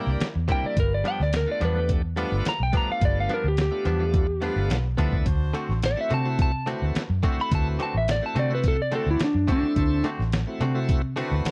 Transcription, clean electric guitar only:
0.00 0.10 A#3 medium
0.00 0.11 E4 loud
0.48 0.66 C3 medium
0.48 0.66 G3 medium
0.48 0.66 A#3 medium
0.48 0.67 E4 medium
1.04 1.22 G2 medium
1.04 1.22 F3 medium
1.04 1.23 B3 medium
1.04 1.23 D4 medium
1.61 1.78 G2 medium
1.61 1.79 F3 medium
1.61 1.79 B3 medium
1.61 1.79 D4 medium
2.16 2.34 G2 medium
2.16 2.35 F3 medium
2.16 2.35 B3 medium
2.16 2.35 D4 medium
2.73 2.91 G2 medium
2.73 2.91 F3 medium
2.73 2.91 B3 medium
2.73 2.92 D4 medium
3.29 3.47 G2 medium
3.29 3.47 F3 medium
3.29 3.47 B3 medium
3.29 3.48 D4 medium
3.85 4.03 G2 medium
3.85 4.03 F3 medium
3.85 4.04 B3 medium
3.85 4.04 D4 medium
4.42 4.59 G2 medium
4.42 4.60 F3 medium
4.42 4.60 B3 medium
4.42 4.60 D4 medium
4.97 5.15 G2 medium
4.97 5.16 F3 medium
4.97 5.16 B3 medium
4.97 5.16 D4 medium
5.54 5.71 D3 medium
5.54 5.72 A3 medium
5.54 5.72 C4 medium
5.54 5.72 F#4 medium
6.10 6.28 D3 medium
6.10 6.28 A3 medium
6.10 6.28 C4 medium
6.10 6.29 F#4 medium
6.66 6.84 D3 medium
6.66 6.84 A3 medium
6.66 6.85 C4 medium
6.66 6.85 F#4 medium
7.23 7.40 D3 medium
7.23 7.41 A3 medium
7.23 7.41 C4 medium
7.23 7.41 F#4 medium
7.79 7.97 D3 medium
7.79 7.97 A3 medium
7.79 7.97 C4 medium
7.79 7.98 F#4 medium
8.35 8.53 D3 medium
8.35 8.53 A3 medium
8.35 8.53 C4 medium
8.35 8.54 F#4 medium
8.92 9.09 D3 medium
8.92 9.10 A3 medium
8.92 9.10 C4 medium
8.92 9.10 F#4 medium
9.48 9.65 D3 medium
9.48 9.66 A3 medium
9.48 9.66 C4 medium
9.48 9.66 F#4 medium
10.04 10.22 D3 medium
10.04 10.22 A3 medium
10.04 10.22 C4 medium
10.04 10.22 F#4 medium
10.61 10.78 D3 medium
10.61 10.78 A3 medium
10.61 10.79 C4 medium
10.61 10.79 F#4 medium
11.16 11.34 D3 medium
11.16 11.34 A3 medium
11.16 11.35 C4 medium
11.16 11.35 F#4 loud

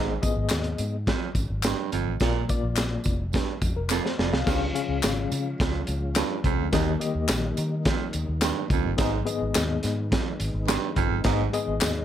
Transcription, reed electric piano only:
0.00 0.75 G#2 medium
0.00 0.12 B3 medium
0.00 0.12 G#4 medium
0.00 0.12 D#5 medium
0.22 0.95 B3 medium
0.22 0.95 G#4 medium
0.22 0.95 D#5 medium
2.21 3.02 A#2 medium
2.21 2.39 A#3 medium
2.21 2.39 F4 medium
2.21 2.39 D5 medium
2.49 3.22 A#3 medium
2.49 3.22 F4 medium
2.49 3.22 D5 medium
3.76 4.03 A#4 medium
4.04 4.18 C5 medium
4.18 4.32 D5 medium
4.33 4.46 F5 medium
4.46 5.28 C#3 medium
4.46 4.65 C#4 medium
4.46 4.65 G#4 medium
4.46 4.65 F5 medium
4.74 5.47 C#4 medium
4.74 5.48 G#4 medium
4.74 5.48 F5 medium
6.72 7.54 D#3 medium
6.72 6.91 A#3 medium
6.72 6.91 G4 medium
6.72 6.91 D#5 medium
6.99 7.73 A#3 medium
6.99 7.73 G4 medium
6.99 7.74 D#5 medium
8.97 9.79 G#2 medium
8.97 9.16 B3 medium
8.97 9.17 G#4 medium
8.97 9.17 D#5 medium
9.26 9.99 B3 medium
9.26 9.99 G#4 medium
9.26 10.00 D#5 medium
11.25 12.05 G#2 medium
11.25 11.43 B3 medium
11.25 11.43 G#4 medium
11.25 11.43 D#5 loud
11.53 12.05 B3 medium
11.53 12.05 G#4 medium
11.53 12.05 D#5 loud

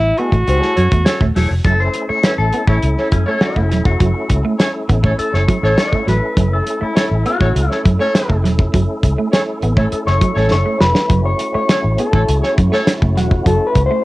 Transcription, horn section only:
0.76 0.85 C#4 medium
0.76 0.85 A4 medium
0.76 0.85 C#5 medium
1.05 1.25 C#4 loud
1.05 1.24 A4 medium
1.05 1.24 C#5 loud
2.23 2.33 C#4 medium
2.23 2.33 A4 medium
2.23 2.33 C#5 loud
2.68 2.77 C#4 medium
2.68 2.77 A4 medium
2.68 2.77 C#5 medium
2.97 3.07 C#4 medium
2.97 3.07 A4 medium
2.97 3.07 C#5 medium
3.26 3.64 C#4 loud
3.26 3.64 A4 loud
3.26 3.64 C#5 loud
4.59 4.69 C#4 loud
4.59 4.69 A4 medium
4.59 4.69 C#5 loud
5.03 5.13 C#4 medium
5.03 5.13 A4 medium
5.03 5.13 C#5 medium
5.33 5.43 C#4 medium
5.33 5.43 A4 medium
5.33 5.43 C#5 medium
5.63 6.01 C#4 loud
5.63 6.01 A4 loud
5.63 6.01 C#5 loud
6.95 7.05 C#4 loud
6.95 7.05 A4 loud
6.95 7.05 C#5 loud
7.41 7.50 C#4 medium
7.41 7.50 A4 medium
7.41 7.50 C#5 medium
7.70 7.79 C#4 medium
7.70 7.79 A4 medium
7.70 7.79 C#5 medium
8.00 8.38 C#4 loud
8.00 8.38 A4 loud
8.00 8.38 C#5 loud
9.32 9.42 C#4 loud
9.32 9.42 A4 medium
9.32 9.42 C#5 loud
9.76 9.86 C#4 medium
9.76 9.86 A4 medium
9.76 9.86 C#5 medium
10.06 10.16 C#4 medium
10.06 10.16 A4 medium
10.06 10.16 C#5 medium
10.35 10.54 C#4 loud
10.35 10.54 A4 loud
10.35 10.54 C#5 loud
11.69 11.79 C#4 medium
11.69 11.78 A4 medium
11.69 11.79 C#5 loud
12.13 12.23 C#4 medium
12.13 12.23 A4 medium
12.13 12.23 C#5 medium
12.43 12.52 C#4 medium
12.43 12.52 A4 medium
12.43 12.52 C#5 medium
12.72 12.91 C#4 loud
12.72 12.91 A4 loud
12.72 12.91 C#5 loud

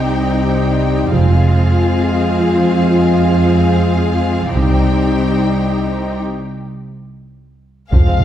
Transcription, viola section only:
0.00 1.09 C4 soft
0.00 1.09 D#4 soft
1.13 4.48 C4 soft
1.13 4.48 F4 soft
4.53 6.19 C4 soft
4.53 6.19 D#4 soft
7.92 7.98 F3 soft
8.07 8.12 C4 soft
8.21 8.24 G#3 soft

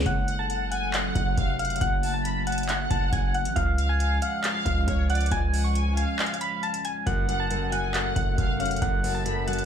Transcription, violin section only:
0.28 0.49 F#5 loud
0.50 0.71 F#5 medium
0.72 0.93 G#5 loud
0.93 1.35 F#5 medium
1.37 1.58 F5 medium
1.60 1.80 F#5 medium
2.03 2.24 A5 medium
2.25 2.46 B5 medium
2.47 2.68 A5 medium
2.69 3.52 F#5 medium
3.79 3.99 F5 medium
4.00 4.21 F5 medium
4.22 4.43 F#5 medium
4.44 4.85 F5 medium
4.88 5.09 C#5 medium
5.10 5.30 D5 medium
5.54 5.74 F#5 medium
5.75 5.96 G#5 medium
5.97 6.59 F5 medium
7.29 7.49 F#5 loud
7.50 7.71 F#5 medium
7.73 7.93 G#5 medium
7.94 8.35 F#5 medium
8.38 8.59 F5 loud
8.60 8.81 F#5 medium
9.03 9.24 A5 medium
9.25 9.46 B5 medium
9.48 9.65 A5 medium

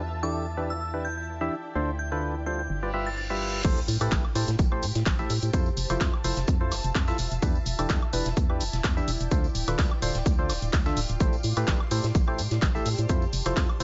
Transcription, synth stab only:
0.23 0.46 E3 medium
0.23 0.46 D4 medium
0.23 0.46 E4 medium
0.23 0.46 G4 medium
0.23 0.46 A4 medium
0.57 0.73 E3 medium
0.57 0.73 D4 medium
0.57 0.73 E4 medium
0.57 0.73 G4 medium
0.57 0.73 B4 medium
0.94 1.07 E3 medium
0.94 1.07 D4 medium
0.94 1.07 E4 medium
0.94 1.07 G4 medium
0.94 1.07 B4 medium
1.41 1.55 E3 loud
1.41 1.55 D4 medium
1.41 1.55 E4 medium
1.41 1.55 G4 medium
1.41 1.55 E5 loud
1.75 1.91 D3 medium
1.75 1.91 D4 medium
1.75 1.91 F4 medium
1.75 1.91 A4 medium
1.75 1.91 C5 loud
2.12 2.35 D3 medium
2.12 2.35 D4 medium
2.12 2.35 F4 medium
2.12 2.35 A4 medium
2.12 2.35 B4 loud
2.46 2.62 G3 medium
2.46 2.62 D4 medium
2.46 2.62 F4 medium
2.46 2.62 A4 medium
2.46 2.62 C5 medium
2.83 2.91 G3 medium
2.83 2.91 F4 medium
2.83 2.91 G4 medium
2.83 2.91 B4 medium
2.83 2.91 D5 medium
2.94 3.09 G3 medium
2.94 3.09 F4 medium
2.94 3.09 G4 medium
2.94 3.09 B4 medium
2.94 3.09 E5 loud
3.30 3.62 G3 medium
3.30 3.62 F4 medium
3.30 3.62 G4 medium
3.30 3.62 B4 medium
3.30 3.62 E5 loud
3.65 3.80 A3 medium
3.65 3.80 E4 medium
3.65 3.80 G4 medium
3.65 3.80 A4 medium
3.65 3.80 C5 loud
4.01 4.24 A3 medium
4.01 4.24 E4 medium
4.01 4.24 G4 medium
4.01 4.24 A4 medium
4.01 4.24 B4 loud
4.35 4.51 A3 medium
4.35 4.51 E4 medium
4.35 4.51 G4 medium
4.35 4.51 A4 medium
4.35 4.51 C5 medium
4.72 4.85 A3 medium
4.72 4.85 E4 medium
4.72 4.85 G4 medium
4.72 4.85 A4 medium
4.72 4.85 C5 medium
5.19 5.33 A3 loud
5.19 5.33 E4 medium
5.19 5.33 G4 medium
5.19 5.33 A4 medium
5.19 5.33 E5 loud
5.53 5.69 F3 medium
5.53 5.69 E4 medium
5.53 5.69 F4 medium
5.53 5.69 A4 medium
5.53 5.69 C5 loud
5.90 6.13 F3 loud
5.90 6.13 E4 medium
5.90 6.13 F4 medium
5.90 6.13 A4 medium
5.90 6.13 C5 loud
6.24 6.40 F3 medium
6.24 6.40 E4 medium
6.24 6.40 F4 medium
6.24 6.40 A4 medium
6.24 6.40 C5 medium
6.61 6.74 F3 medium
6.61 6.74 E4 medium
6.61 6.74 F4 medium
6.61 6.74 A4 medium
6.61 6.74 C5 medium
7.08 7.17 E3 loud
7.08 7.17 E4 medium
7.08 7.17 F4 medium
7.08 7.17 A4 medium
7.08 7.17 E5 loud
7.42 7.58 E3 medium
7.42 7.58 D4 medium
7.42 7.58 E4 medium
7.42 7.58 G4 medium
7.42 7.58 B4 loud
7.79 8.02 E3 medium
7.79 8.02 D4 medium
7.79 8.02 E4 medium
7.79 8.02 G4 medium
7.79 8.02 A4 loud
8.13 8.28 E3 medium
8.13 8.28 D4 medium
8.13 8.28 E4 medium
8.13 8.28 G4 medium
8.13 8.28 B4 medium
8.50 8.63 E3 medium
8.50 8.63 D4 medium
8.50 8.63 E4 medium
8.50 8.63 G4 medium
8.50 8.63 B4 medium
8.97 9.11 E3 loud
8.97 9.11 D4 medium
8.97 9.11 E4 medium
8.97 9.11 G4 medium
8.97 9.11 E5 loud
9.31 9.47 D3 medium
9.31 9.47 D4 medium
9.31 9.47 F4 medium
9.31 9.47 A4 medium
9.31 9.47 C5 loud
9.68 9.91 D3 medium
9.68 9.91 D4 medium
9.68 9.91 F4 medium
9.68 9.91 A4 medium
9.68 9.91 B4 loud
10.02 10.17 D3 medium
10.02 10.17 D4 medium
10.02 10.17 F4 medium
10.02 10.17 A4 medium
10.02 10.17 C5 medium
10.39 10.52 D3 medium
10.39 10.52 D4 medium
10.39 10.52 F4 medium
10.39 10.52 A4 medium
10.39 10.52 C5 medium
10.86 11.00 D3 loud
10.86 11.00 D4 medium
10.86 11.00 F4 medium
10.86 11.00 A4 medium
10.86 11.00 E5 loud
11.20 11.36 A3 medium
11.20 11.36 E4 medium
11.20 11.36 G4 medium
11.20 11.36 A4 medium
11.20 11.36 C5 loud
11.57 11.80 A3 medium
11.57 11.80 E4 medium
11.57 11.80 G4 medium
11.57 11.80 A4 medium
11.57 11.80 B4 loud
11.91 12.06 A3 medium
11.91 12.06 E4 medium
11.91 12.06 G4 medium
11.91 12.06 A4 medium
11.91 12.06 C5 medium
12.28 12.41 A3 medium
12.28 12.41 E4 medium
12.28 12.41 G4 medium
12.28 12.41 A4 medium
12.28 12.41 C5 medium
12.75 12.89 A3 loud
12.75 12.89 E4 medium
12.75 12.89 G4 medium
12.75 12.89 A4 medium
12.75 12.89 E5 loud
13.09 13.25 F3 medium
13.09 13.25 E4 medium
13.09 13.25 F4 medium
13.09 13.25 A4 medium
13.09 13.25 C5 loud
13.46 13.69 F3 medium
13.46 13.69 E4 medium
13.46 13.69 F4 medium
13.46 13.69 A4 medium
13.46 13.69 C5 loud
13.80 13.83 F3 medium
13.80 13.83 E4 medium
13.80 13.83 F4 medium
13.80 13.83 A4 medium
13.80 13.83 C5 medium

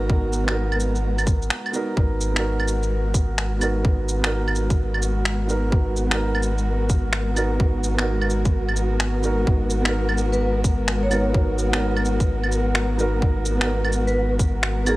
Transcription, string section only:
0.00 1.95 G#3 medium
0.00 1.97 B3 medium
0.00 1.97 F#4 medium
0.00 1.97 A#4 medium
1.96 14.97 G#3 medium
2.33 14.97 F#4 medium
2.52 14.97 B3 medium
2.56 14.97 A#4 medium

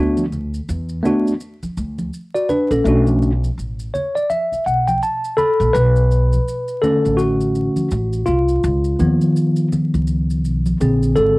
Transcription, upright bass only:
0.00 0.58 D2 loud
0.69 1.00 E2 medium
1.63 muted upright bass stroke soft
1.77 2.08 D2 medium
2.71 2.83 A#1 medium
2.85 3.47 B1 loud
3.58 3.89 A1 medium
4.52 muted upright bass stroke soft
4.66 4.97 B1 medium
5.60 5.72 A#1 medium
5.74 6.36 B1 loud
7.05 7.67 A1 medium
7.92 8.23 A1 medium
8.27 8.58 C2 medium
8.64 8.95 C#2 loud
9.00 9.18 D#2 medium
9.94 10.45 C#2 medium
10.45 10.76 B1 medium
10.81 11.12 A#1 medium
11.17 11.35 G#1 medium

